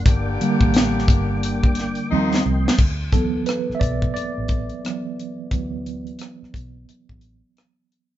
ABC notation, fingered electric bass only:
X:1
M:4/4
L:1/16
Q:"Swing 16ths" 1/4=88
K:Glyd
V:1 name="Fingered electric bass" clef=bass
G,,,2 z A,,,3 G,,,4- G,,, z _E,,2 =C,, z | D,,4 z2 B,,,2 z A,,,2 z4 z | D,,4 z2 B,,,2 z A,,,2 z4 z |]